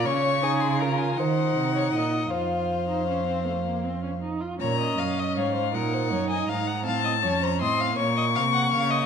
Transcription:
X:1
M:6/8
L:1/16
Q:3/8=53
K:Bbm
V:1 name="Violin"
d'3 c' b a g6 | f8- f2 z2 | b2 e2 f2 g3 a b2 | =a3 b c'2 d'6 |]
V:2 name="Violin"
d2 A2 B2 c3 d e2 | c8- c2 z2 | d e f e d c B c d e f g | f e d c e f d e f g f e |]
V:3 name="Viola"
D2 E2 F2 E6 | F3 E D C =A, B, C D E F | D6 E6 | C2 D2 C2 B,6 |]
V:4 name="Cello" clef=bass
D,6 E,2 C,2 B,,2 | F,,8- F,,2 z2 | B,,2 G,,2 A,,2 B,,2 G,,2 A,,2 | =A,,2 F,,2 A,,2 B,,2 C,2 D,2 |]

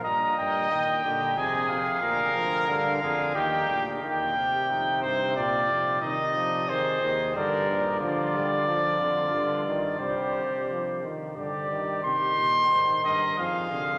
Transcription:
X:1
M:3/4
L:1/8
Q:1/4=90
K:Eb
V:1 name="Trumpet"
b g g2 a f- | f2 f2 g2 | g3 c d2 | e2 c2 d2 |
[K:Cm] d6 | c3 z d2 | c'3 e f2 |]
V:2 name="Trumpet"
e3 G A2 | B3 A G2 | G2 E2 F2 | E2 A2 B2 |
[K:Cm] F2 F4 | G3 z G2 | G2 c B A2 |]
V:3 name="Trombone" clef=bass
B,,2 E, D, C,2 | B,, F, D, D, E, B,, | E, C,4- C, | E, F, E, E, D, B,, |
[K:Cm] F, G, F, D, D, E, | G, z F, E, D, E, | E,4 F, D, |]
V:4 name="Bass trombone" clef=bass
G,, G,, B,, B,, F,, F,, | D,, D,, G,, F,, E,, D,, | E,,2 F,, G,, B,, F,, | C,3 E,, G,,2 |
[K:Cm] D,3 F,, G,,2 | C,3 z G,,2 | C, B,, A,, G,, F,, C, |]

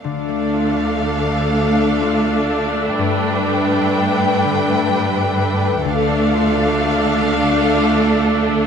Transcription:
X:1
M:4/4
L:1/8
Q:1/4=83
K:Ddor
V:1 name="Violin section"
[Af]8 | [Bg]8 | [Af]8 |]
V:2 name="Viola section"
[A,D]8- | [A,D]8 | [A,D]8 |]
V:3 name="Harp"
(3D, A, F (3A, A A, (3D A, F (3A, A A, | (3G,, A, G (3A, B A, (3D, A, G (3A, B A, | (3D, A, F (3A, A A, (3D A, F (3A, A A, |]
V:4 name="Cello section" clef=bass
D,,8 | G,,8 | D,,8 |]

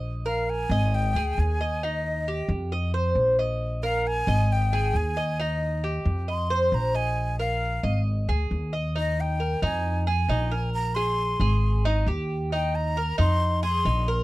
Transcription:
X:1
M:4/4
L:1/8
Q:1/4=135
K:Eb
V:1 name="Flute"
z f a2 g2 a2 | e3 z4 z | z f a2 g2 a2 | e3 z c'2 b a- |
a f3 z4 | e g2 a2 a3 | b c'4 z3 | g b2 c'2 c'3 |]
V:2 name="Cuban tres"
e B2 e2 A2 e | E2 G2 e c2 e- | e B2 e2 A2 e | E2 G2 e c2 e- |
e B2 e2 A2 e | E2 B E2 A E B- | B A2 A2 E G2 | E2 B E2 A E B |]
V:3 name="Upright bass" clef=bass
B,,,3 A,,,2 D,, E,,2- | E,,3 F,,3 B,,,2- | B,,,3 A,,,3 E,,2- | E,,3 F,,3 B,,,2- |
B,,,3 A,,,2 D,, E,,2- | E,,3 F,,3 B,,,2- | B,,,3 A,,,3 E,,2- | E,,3 F,,3 B,,,2 |]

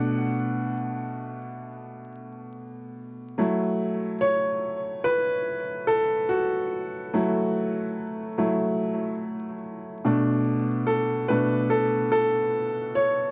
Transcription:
X:1
M:4/4
L:1/8
Q:"Swing 16ths" 1/4=72
K:Bm
V:1 name="Upright piano"
f2 z6 | z2 c2 B2 A F- | F3 z4 z | z2 A B A A2 c |]
V:2 name="Upright piano"
[B,,A,D]6- [B,,A,D] z | [F,A,E] z6 z | z [F,A,E] z2 [F,A,E] z3 | [B,,A,D]3 [B,,A,D] z4 |]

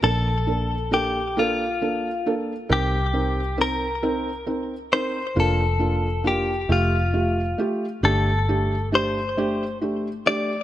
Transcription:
X:1
M:6/8
L:1/8
Q:3/8=45
K:Bb
V:1 name="Clean electric guitar"
A2 G F2 z | G2 B2 z c | A2 G F2 z | A2 c2 z d |]
V:2 name="Felt piano"
[B,DA] [B,DA] [B,DA] [B,DA] [B,DA] [B,DA] | [CEB] [CEB] [CEB] [CEB] [CEB] [CEB] | [B,DF] [B,DF] [B,DF] [A,FG] [A,FG] [A,FG] | [A,DG] [A,DG] [A,DG] [A,DG] [A,DG] [A,DG] |]
V:3 name="Fingered electric bass" clef=bass
B,,,6 | C,,6 | F,,,3 F,,,2 z | G,,,6 |]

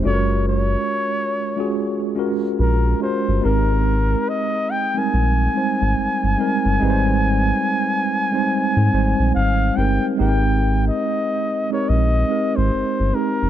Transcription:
X:1
M:4/4
L:1/16
Q:"Swing 16ths" 1/4=71
K:Ab
V:1 name="Flugelhorn"
d2 d8 z2 B2 c2 | B4 e2 g a8- a- | a12 f2 g2 | g3 e4 d e3 c3 B2 |]
V:2 name="Tine electric piano"
[A,DF_G=AB]6 z [_A,DFG_A]3 [A,DFGB]3 z [A,DFGB]2 | [A,CEGB]6 z [G,A,CEB]3 [G,A,CEc]3 z [G,A,CEB]2 | [G,A,CE_c=c]6 z [G,A,CEc]3 [G,A,CEc]3 z [A,CEGB]2 | [A,B,CEGB]6 z [A,CEGB]3 [A,CEGB]3 z [A,CEGB]2 |]
V:3 name="Analog synth bass" clef=bass
_G,,,4 z8 B,,,2 z =G,,, | A,,,4 z4 B,,,2 z A,,, G,,, G,,, z G,,, | A,,,4 z4 z A,, A,,, B,,, A,,,2 G,,, z | A,,,4 z4 B,,,2 z A,,, G,,, G,,, z F,,, |]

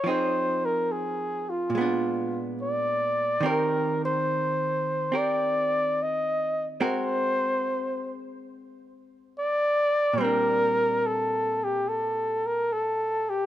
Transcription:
X:1
M:4/4
L:1/8
Q:"Swing" 1/4=71
K:Bb
V:1 name="Flugelhorn"
c B _A F2 z d2 | B c3 d2 e z | c3 z3 d2 | B2 A G A B A G |]
V:2 name="Hollow-body jazz guitar"
[F,CE_A]4 [B,,_A,_CD]4 | [E,CGB]4 [CGB]4 | [_A,C_GB]8 | [B,,G,CD]8 |]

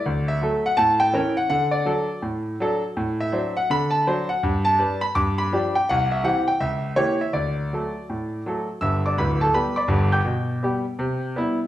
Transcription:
X:1
M:4/4
L:1/8
Q:"Swing" 1/4=165
K:D
V:1 name="Grand piano"
d e2 f a g2 f | f d3 z4 | [K:G] z e2 f b a2 f | z a2 b d' b2 g |
f e f g e2 ^c e | d6- d z | [ee'] [dd'] [Bb] [Aa] [Bb] [dbd']2 [gd'g']- | [gd'g']8 |]
V:2 name="Grand piano" clef=bass
D,,2 [F,A,A]2 A,,2 [E,C_B]2 | D,2 [F,DA]2 A,,2 [F,DA]2 | [K:G] A,,2 [F,Dc]2 D,2 [F,Dc]2 | G,,2 [G,DB]2 G,,2 [=F,DG]2 |
C,,2 [E,CG]2 ^C,,2 [E,^A,G]2 | D,,2 [F,A,A]2 A,,2 [F,A,A]2 | [G,,,G,,]2 [D,,,D,,]2 [G,B,G]2 [G,,,G,,]2 | B,,2 [G,B,G]2 C,2 [G,B,E]2 |]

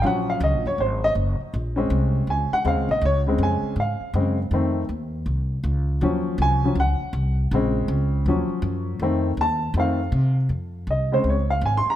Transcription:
X:1
M:4/4
L:1/8
Q:"Swing" 1/4=161
K:Bbm
V:1 name="Upright piano"
[fg] f e d c e z2 | z4 a g f e | d z a2 f3 z | z8 |
z2 a2 g3 z | z8 | z2 =a2 f3 z | z2 e c d f (3a c' b |]
V:2 name="Upright piano" clef=bass
[F,G,D]8 | z [A,CD]4- [A,CD] [D,A,C] z | z [D,A,C]3 z2 [D,A,C] z | [E,=A,C] z6 z |
[F,G,D]3 [F,G,D] z4 | [D,A,C]4 [F,G,D]4 | [E,=A,C] z3 [E,A,C] z3 | z3 [D,A,C] z4 |]
V:3 name="Upright bass" clef=bass
B,,,2 (3D,, B,,, G,,, A,,,2 G,,, z | B,,,2 C,,2 D,, z (3E,, D,, B,,, | D,,2 F,, z A,, z G,,2 | F,,2 E,,2 C,,2 D,,2 |
E,,2 C,,2 D,, z C,,2 | B,,,2 D,,2 E,, z G,,2 | F,,2 E,,2 F,,2 C,2 | F,,2 C,,2 D,,2 A,,, z |]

